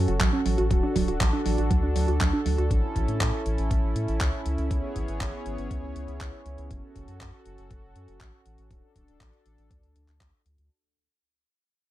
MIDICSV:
0, 0, Header, 1, 5, 480
1, 0, Start_track
1, 0, Tempo, 500000
1, 679, Time_signature, 4, 2, 24, 8
1, 11431, End_track
2, 0, Start_track
2, 0, Title_t, "Analog synth pad"
2, 0, Program_c, 0, 89
2, 0, Note_on_c, 0, 61, 78
2, 0, Note_on_c, 0, 66, 81
2, 0, Note_on_c, 0, 69, 94
2, 641, Note_off_c, 0, 61, 0
2, 680, Note_on_c, 0, 62, 83
2, 2561, Note_off_c, 0, 66, 0
2, 2580, Note_off_c, 0, 62, 0
2, 2599, Note_on_c, 0, 61, 86
2, 2600, Note_on_c, 0, 64, 75
2, 4481, Note_off_c, 0, 69, 0
2, 4519, Note_on_c, 0, 73, 95
2, 4520, Note_on_c, 0, 59, 85
2, 4520, Note_on_c, 0, 68, 76
2, 6401, Note_off_c, 0, 64, 0
2, 6420, Note_off_c, 0, 59, 0
2, 6420, Note_off_c, 0, 68, 0
2, 6420, Note_off_c, 0, 73, 0
2, 6441, Note_on_c, 0, 66, 75
2, 6442, Note_on_c, 0, 69, 88
2, 8321, Note_off_c, 0, 61, 0
2, 8341, Note_off_c, 0, 69, 0
2, 8360, Note_on_c, 0, 62, 81
2, 8360, Note_on_c, 0, 69, 88
2, 10242, Note_off_c, 0, 66, 0
2, 10260, Note_off_c, 0, 62, 0
2, 10260, Note_off_c, 0, 69, 0
2, 11431, End_track
3, 0, Start_track
3, 0, Title_t, "Synth arpeggio sound"
3, 0, Program_c, 1, 84
3, 78, Note_on_c, 1, 66, 74
3, 139, Note_off_c, 1, 66, 0
3, 198, Note_on_c, 1, 54, 84
3, 312, Note_off_c, 1, 54, 0
3, 318, Note_on_c, 1, 61, 101
3, 379, Note_off_c, 1, 61, 0
3, 437, Note_on_c, 1, 54, 76
3, 539, Note_off_c, 1, 54, 0
3, 557, Note_on_c, 1, 66, 97
3, 659, Note_off_c, 1, 66, 0
3, 678, Note_on_c, 1, 54, 79
3, 739, Note_off_c, 1, 54, 0
3, 799, Note_on_c, 1, 62, 74
3, 900, Note_off_c, 1, 62, 0
3, 919, Note_on_c, 1, 54, 97
3, 1020, Note_off_c, 1, 54, 0
3, 1039, Note_on_c, 1, 66, 76
3, 1099, Note_off_c, 1, 66, 0
3, 1158, Note_on_c, 1, 54, 78
3, 1272, Note_off_c, 1, 54, 0
3, 1278, Note_on_c, 1, 62, 100
3, 1339, Note_off_c, 1, 62, 0
3, 1398, Note_on_c, 1, 54, 78
3, 1459, Note_off_c, 1, 54, 0
3, 1518, Note_on_c, 1, 66, 74
3, 1620, Note_off_c, 1, 66, 0
3, 1639, Note_on_c, 1, 54, 81
3, 1740, Note_off_c, 1, 54, 0
3, 1758, Note_on_c, 1, 62, 75
3, 1819, Note_off_c, 1, 62, 0
3, 1878, Note_on_c, 1, 54, 99
3, 1980, Note_off_c, 1, 54, 0
3, 1998, Note_on_c, 1, 66, 72
3, 2059, Note_off_c, 1, 66, 0
3, 2119, Note_on_c, 1, 54, 82
3, 2233, Note_off_c, 1, 54, 0
3, 2239, Note_on_c, 1, 62, 101
3, 2300, Note_off_c, 1, 62, 0
3, 2359, Note_on_c, 1, 54, 75
3, 2460, Note_off_c, 1, 54, 0
3, 2479, Note_on_c, 1, 66, 99
3, 2580, Note_off_c, 1, 66, 0
3, 11431, End_track
4, 0, Start_track
4, 0, Title_t, "Analog synth bass"
4, 0, Program_c, 2, 38
4, 78, Note_on_c, 2, 30, 81
4, 185, Note_off_c, 2, 30, 0
4, 198, Note_on_c, 2, 33, 95
4, 305, Note_off_c, 2, 33, 0
4, 438, Note_on_c, 2, 33, 90
4, 545, Note_off_c, 2, 33, 0
4, 559, Note_on_c, 2, 33, 83
4, 666, Note_off_c, 2, 33, 0
4, 678, Note_on_c, 2, 26, 99
4, 785, Note_off_c, 2, 26, 0
4, 918, Note_on_c, 2, 26, 90
4, 1025, Note_off_c, 2, 26, 0
4, 1038, Note_on_c, 2, 26, 79
4, 1145, Note_off_c, 2, 26, 0
4, 1158, Note_on_c, 2, 33, 99
4, 1265, Note_off_c, 2, 33, 0
4, 1398, Note_on_c, 2, 33, 91
4, 1505, Note_off_c, 2, 33, 0
4, 1518, Note_on_c, 2, 33, 76
4, 1625, Note_off_c, 2, 33, 0
4, 1639, Note_on_c, 2, 38, 94
4, 1745, Note_off_c, 2, 38, 0
4, 1759, Note_on_c, 2, 38, 71
4, 1866, Note_off_c, 2, 38, 0
4, 1879, Note_on_c, 2, 38, 90
4, 1986, Note_off_c, 2, 38, 0
4, 1999, Note_on_c, 2, 38, 80
4, 2105, Note_off_c, 2, 38, 0
4, 2118, Note_on_c, 2, 38, 103
4, 2225, Note_off_c, 2, 38, 0
4, 2359, Note_on_c, 2, 38, 89
4, 2466, Note_off_c, 2, 38, 0
4, 2478, Note_on_c, 2, 38, 80
4, 2585, Note_off_c, 2, 38, 0
4, 2599, Note_on_c, 2, 33, 97
4, 2705, Note_off_c, 2, 33, 0
4, 2839, Note_on_c, 2, 33, 96
4, 2946, Note_off_c, 2, 33, 0
4, 2960, Note_on_c, 2, 45, 77
4, 3066, Note_off_c, 2, 45, 0
4, 3079, Note_on_c, 2, 45, 97
4, 3186, Note_off_c, 2, 45, 0
4, 3320, Note_on_c, 2, 33, 91
4, 3426, Note_off_c, 2, 33, 0
4, 3440, Note_on_c, 2, 33, 77
4, 3546, Note_off_c, 2, 33, 0
4, 3560, Note_on_c, 2, 33, 98
4, 3666, Note_off_c, 2, 33, 0
4, 3679, Note_on_c, 2, 33, 70
4, 3786, Note_off_c, 2, 33, 0
4, 3800, Note_on_c, 2, 45, 93
4, 3906, Note_off_c, 2, 45, 0
4, 3920, Note_on_c, 2, 33, 80
4, 4026, Note_off_c, 2, 33, 0
4, 4039, Note_on_c, 2, 37, 95
4, 4146, Note_off_c, 2, 37, 0
4, 4280, Note_on_c, 2, 37, 91
4, 4386, Note_off_c, 2, 37, 0
4, 4400, Note_on_c, 2, 37, 79
4, 4506, Note_off_c, 2, 37, 0
4, 4520, Note_on_c, 2, 37, 99
4, 4626, Note_off_c, 2, 37, 0
4, 4760, Note_on_c, 2, 32, 93
4, 4866, Note_off_c, 2, 32, 0
4, 4880, Note_on_c, 2, 32, 81
4, 4986, Note_off_c, 2, 32, 0
4, 5000, Note_on_c, 2, 32, 97
4, 5106, Note_off_c, 2, 32, 0
4, 5239, Note_on_c, 2, 32, 92
4, 5346, Note_off_c, 2, 32, 0
4, 5360, Note_on_c, 2, 32, 81
4, 5466, Note_off_c, 2, 32, 0
4, 5479, Note_on_c, 2, 37, 96
4, 5586, Note_off_c, 2, 37, 0
4, 5599, Note_on_c, 2, 37, 72
4, 5706, Note_off_c, 2, 37, 0
4, 5719, Note_on_c, 2, 37, 88
4, 5826, Note_off_c, 2, 37, 0
4, 5838, Note_on_c, 2, 37, 79
4, 5945, Note_off_c, 2, 37, 0
4, 5959, Note_on_c, 2, 37, 99
4, 6066, Note_off_c, 2, 37, 0
4, 6199, Note_on_c, 2, 37, 90
4, 6306, Note_off_c, 2, 37, 0
4, 6320, Note_on_c, 2, 37, 80
4, 6426, Note_off_c, 2, 37, 0
4, 6439, Note_on_c, 2, 30, 98
4, 6546, Note_off_c, 2, 30, 0
4, 6679, Note_on_c, 2, 30, 92
4, 6786, Note_off_c, 2, 30, 0
4, 6800, Note_on_c, 2, 42, 78
4, 6906, Note_off_c, 2, 42, 0
4, 6919, Note_on_c, 2, 42, 97
4, 7026, Note_off_c, 2, 42, 0
4, 7159, Note_on_c, 2, 30, 93
4, 7266, Note_off_c, 2, 30, 0
4, 7281, Note_on_c, 2, 30, 79
4, 7387, Note_off_c, 2, 30, 0
4, 7399, Note_on_c, 2, 30, 96
4, 7506, Note_off_c, 2, 30, 0
4, 7521, Note_on_c, 2, 30, 72
4, 7627, Note_off_c, 2, 30, 0
4, 7640, Note_on_c, 2, 42, 92
4, 7746, Note_off_c, 2, 42, 0
4, 7761, Note_on_c, 2, 30, 82
4, 7867, Note_off_c, 2, 30, 0
4, 7878, Note_on_c, 2, 33, 97
4, 7985, Note_off_c, 2, 33, 0
4, 8119, Note_on_c, 2, 33, 88
4, 8226, Note_off_c, 2, 33, 0
4, 8239, Note_on_c, 2, 33, 81
4, 8346, Note_off_c, 2, 33, 0
4, 8358, Note_on_c, 2, 26, 99
4, 8465, Note_off_c, 2, 26, 0
4, 8598, Note_on_c, 2, 26, 88
4, 8705, Note_off_c, 2, 26, 0
4, 8719, Note_on_c, 2, 26, 77
4, 8826, Note_off_c, 2, 26, 0
4, 8839, Note_on_c, 2, 33, 98
4, 8945, Note_off_c, 2, 33, 0
4, 9079, Note_on_c, 2, 33, 90
4, 9186, Note_off_c, 2, 33, 0
4, 9199, Note_on_c, 2, 33, 77
4, 9306, Note_off_c, 2, 33, 0
4, 9318, Note_on_c, 2, 38, 95
4, 9425, Note_off_c, 2, 38, 0
4, 9439, Note_on_c, 2, 38, 72
4, 9546, Note_off_c, 2, 38, 0
4, 9559, Note_on_c, 2, 38, 88
4, 9666, Note_off_c, 2, 38, 0
4, 9677, Note_on_c, 2, 38, 77
4, 9785, Note_off_c, 2, 38, 0
4, 9798, Note_on_c, 2, 38, 99
4, 9905, Note_off_c, 2, 38, 0
4, 10039, Note_on_c, 2, 38, 88
4, 10145, Note_off_c, 2, 38, 0
4, 10159, Note_on_c, 2, 38, 82
4, 10266, Note_off_c, 2, 38, 0
4, 11431, End_track
5, 0, Start_track
5, 0, Title_t, "Drums"
5, 78, Note_on_c, 9, 42, 51
5, 174, Note_off_c, 9, 42, 0
5, 197, Note_on_c, 9, 39, 121
5, 197, Note_on_c, 9, 42, 77
5, 198, Note_on_c, 9, 36, 114
5, 293, Note_off_c, 9, 39, 0
5, 293, Note_off_c, 9, 42, 0
5, 294, Note_off_c, 9, 36, 0
5, 438, Note_on_c, 9, 46, 101
5, 534, Note_off_c, 9, 46, 0
5, 558, Note_on_c, 9, 42, 49
5, 654, Note_off_c, 9, 42, 0
5, 678, Note_on_c, 9, 36, 111
5, 679, Note_on_c, 9, 42, 76
5, 774, Note_off_c, 9, 36, 0
5, 775, Note_off_c, 9, 42, 0
5, 918, Note_on_c, 9, 36, 60
5, 919, Note_on_c, 9, 46, 92
5, 1014, Note_off_c, 9, 36, 0
5, 1015, Note_off_c, 9, 46, 0
5, 1039, Note_on_c, 9, 42, 50
5, 1135, Note_off_c, 9, 42, 0
5, 1159, Note_on_c, 9, 36, 122
5, 1159, Note_on_c, 9, 39, 114
5, 1159, Note_on_c, 9, 42, 72
5, 1255, Note_off_c, 9, 36, 0
5, 1255, Note_off_c, 9, 39, 0
5, 1255, Note_off_c, 9, 42, 0
5, 1398, Note_on_c, 9, 46, 99
5, 1494, Note_off_c, 9, 46, 0
5, 1518, Note_on_c, 9, 42, 49
5, 1614, Note_off_c, 9, 42, 0
5, 1638, Note_on_c, 9, 42, 74
5, 1639, Note_on_c, 9, 36, 123
5, 1734, Note_off_c, 9, 42, 0
5, 1735, Note_off_c, 9, 36, 0
5, 1879, Note_on_c, 9, 46, 96
5, 1975, Note_off_c, 9, 46, 0
5, 1999, Note_on_c, 9, 42, 51
5, 2095, Note_off_c, 9, 42, 0
5, 2119, Note_on_c, 9, 36, 119
5, 2120, Note_on_c, 9, 39, 112
5, 2120, Note_on_c, 9, 42, 72
5, 2215, Note_off_c, 9, 36, 0
5, 2216, Note_off_c, 9, 39, 0
5, 2216, Note_off_c, 9, 42, 0
5, 2360, Note_on_c, 9, 46, 96
5, 2456, Note_off_c, 9, 46, 0
5, 2481, Note_on_c, 9, 42, 46
5, 2577, Note_off_c, 9, 42, 0
5, 2599, Note_on_c, 9, 36, 110
5, 2600, Note_on_c, 9, 42, 72
5, 2695, Note_off_c, 9, 36, 0
5, 2696, Note_off_c, 9, 42, 0
5, 2839, Note_on_c, 9, 36, 55
5, 2840, Note_on_c, 9, 42, 67
5, 2935, Note_off_c, 9, 36, 0
5, 2936, Note_off_c, 9, 42, 0
5, 2960, Note_on_c, 9, 42, 49
5, 3056, Note_off_c, 9, 42, 0
5, 3079, Note_on_c, 9, 36, 112
5, 3080, Note_on_c, 9, 39, 105
5, 3080, Note_on_c, 9, 42, 66
5, 3175, Note_off_c, 9, 36, 0
5, 3176, Note_off_c, 9, 39, 0
5, 3176, Note_off_c, 9, 42, 0
5, 3320, Note_on_c, 9, 42, 73
5, 3416, Note_off_c, 9, 42, 0
5, 3440, Note_on_c, 9, 42, 48
5, 3536, Note_off_c, 9, 42, 0
5, 3559, Note_on_c, 9, 36, 112
5, 3561, Note_on_c, 9, 42, 68
5, 3655, Note_off_c, 9, 36, 0
5, 3657, Note_off_c, 9, 42, 0
5, 3800, Note_on_c, 9, 42, 70
5, 3896, Note_off_c, 9, 42, 0
5, 3920, Note_on_c, 9, 42, 48
5, 4016, Note_off_c, 9, 42, 0
5, 4039, Note_on_c, 9, 36, 112
5, 4039, Note_on_c, 9, 39, 112
5, 4039, Note_on_c, 9, 42, 70
5, 4135, Note_off_c, 9, 36, 0
5, 4135, Note_off_c, 9, 39, 0
5, 4135, Note_off_c, 9, 42, 0
5, 4279, Note_on_c, 9, 42, 70
5, 4375, Note_off_c, 9, 42, 0
5, 4399, Note_on_c, 9, 42, 46
5, 4495, Note_off_c, 9, 42, 0
5, 4519, Note_on_c, 9, 36, 106
5, 4519, Note_on_c, 9, 42, 68
5, 4615, Note_off_c, 9, 36, 0
5, 4615, Note_off_c, 9, 42, 0
5, 4759, Note_on_c, 9, 36, 55
5, 4760, Note_on_c, 9, 42, 69
5, 4855, Note_off_c, 9, 36, 0
5, 4856, Note_off_c, 9, 42, 0
5, 4880, Note_on_c, 9, 42, 49
5, 4976, Note_off_c, 9, 42, 0
5, 5000, Note_on_c, 9, 36, 107
5, 5000, Note_on_c, 9, 39, 105
5, 5000, Note_on_c, 9, 42, 70
5, 5096, Note_off_c, 9, 36, 0
5, 5096, Note_off_c, 9, 39, 0
5, 5096, Note_off_c, 9, 42, 0
5, 5239, Note_on_c, 9, 42, 73
5, 5335, Note_off_c, 9, 42, 0
5, 5361, Note_on_c, 9, 42, 48
5, 5457, Note_off_c, 9, 42, 0
5, 5479, Note_on_c, 9, 36, 112
5, 5480, Note_on_c, 9, 42, 71
5, 5575, Note_off_c, 9, 36, 0
5, 5576, Note_off_c, 9, 42, 0
5, 5720, Note_on_c, 9, 42, 72
5, 5816, Note_off_c, 9, 42, 0
5, 5839, Note_on_c, 9, 42, 47
5, 5935, Note_off_c, 9, 42, 0
5, 5959, Note_on_c, 9, 36, 103
5, 5960, Note_on_c, 9, 39, 106
5, 5960, Note_on_c, 9, 42, 69
5, 6055, Note_off_c, 9, 36, 0
5, 6056, Note_off_c, 9, 39, 0
5, 6056, Note_off_c, 9, 42, 0
5, 6199, Note_on_c, 9, 42, 68
5, 6295, Note_off_c, 9, 42, 0
5, 6319, Note_on_c, 9, 42, 46
5, 6415, Note_off_c, 9, 42, 0
5, 6438, Note_on_c, 9, 42, 72
5, 6439, Note_on_c, 9, 36, 102
5, 6534, Note_off_c, 9, 42, 0
5, 6535, Note_off_c, 9, 36, 0
5, 6678, Note_on_c, 9, 42, 67
5, 6679, Note_on_c, 9, 36, 54
5, 6774, Note_off_c, 9, 42, 0
5, 6775, Note_off_c, 9, 36, 0
5, 6797, Note_on_c, 9, 42, 47
5, 6893, Note_off_c, 9, 42, 0
5, 6918, Note_on_c, 9, 39, 101
5, 6918, Note_on_c, 9, 42, 66
5, 6919, Note_on_c, 9, 36, 103
5, 7014, Note_off_c, 9, 39, 0
5, 7014, Note_off_c, 9, 42, 0
5, 7015, Note_off_c, 9, 36, 0
5, 7157, Note_on_c, 9, 42, 71
5, 7253, Note_off_c, 9, 42, 0
5, 7278, Note_on_c, 9, 42, 49
5, 7374, Note_off_c, 9, 42, 0
5, 7398, Note_on_c, 9, 42, 70
5, 7399, Note_on_c, 9, 36, 106
5, 7494, Note_off_c, 9, 42, 0
5, 7495, Note_off_c, 9, 36, 0
5, 7638, Note_on_c, 9, 42, 69
5, 7734, Note_off_c, 9, 42, 0
5, 7758, Note_on_c, 9, 42, 48
5, 7854, Note_off_c, 9, 42, 0
5, 7879, Note_on_c, 9, 36, 103
5, 7879, Note_on_c, 9, 39, 105
5, 7879, Note_on_c, 9, 42, 70
5, 7975, Note_off_c, 9, 36, 0
5, 7975, Note_off_c, 9, 39, 0
5, 7975, Note_off_c, 9, 42, 0
5, 8118, Note_on_c, 9, 42, 73
5, 8214, Note_off_c, 9, 42, 0
5, 8238, Note_on_c, 9, 42, 47
5, 8334, Note_off_c, 9, 42, 0
5, 8358, Note_on_c, 9, 36, 105
5, 8358, Note_on_c, 9, 42, 72
5, 8454, Note_off_c, 9, 36, 0
5, 8454, Note_off_c, 9, 42, 0
5, 8598, Note_on_c, 9, 36, 54
5, 8598, Note_on_c, 9, 42, 74
5, 8694, Note_off_c, 9, 36, 0
5, 8694, Note_off_c, 9, 42, 0
5, 8719, Note_on_c, 9, 42, 50
5, 8815, Note_off_c, 9, 42, 0
5, 8838, Note_on_c, 9, 36, 107
5, 8839, Note_on_c, 9, 39, 100
5, 8839, Note_on_c, 9, 42, 73
5, 8934, Note_off_c, 9, 36, 0
5, 8935, Note_off_c, 9, 39, 0
5, 8935, Note_off_c, 9, 42, 0
5, 8959, Note_on_c, 9, 42, 33
5, 9055, Note_off_c, 9, 42, 0
5, 9079, Note_on_c, 9, 42, 74
5, 9175, Note_off_c, 9, 42, 0
5, 9199, Note_on_c, 9, 42, 49
5, 9295, Note_off_c, 9, 42, 0
5, 9318, Note_on_c, 9, 36, 113
5, 9319, Note_on_c, 9, 42, 75
5, 9414, Note_off_c, 9, 36, 0
5, 9415, Note_off_c, 9, 42, 0
5, 9440, Note_on_c, 9, 42, 33
5, 9536, Note_off_c, 9, 42, 0
5, 9559, Note_on_c, 9, 42, 76
5, 9655, Note_off_c, 9, 42, 0
5, 9680, Note_on_c, 9, 39, 33
5, 9680, Note_on_c, 9, 42, 51
5, 9776, Note_off_c, 9, 39, 0
5, 9776, Note_off_c, 9, 42, 0
5, 9798, Note_on_c, 9, 36, 105
5, 9800, Note_on_c, 9, 39, 101
5, 9800, Note_on_c, 9, 42, 74
5, 9894, Note_off_c, 9, 36, 0
5, 9896, Note_off_c, 9, 39, 0
5, 9896, Note_off_c, 9, 42, 0
5, 10040, Note_on_c, 9, 42, 75
5, 10136, Note_off_c, 9, 42, 0
5, 10159, Note_on_c, 9, 42, 47
5, 10255, Note_off_c, 9, 42, 0
5, 11431, End_track
0, 0, End_of_file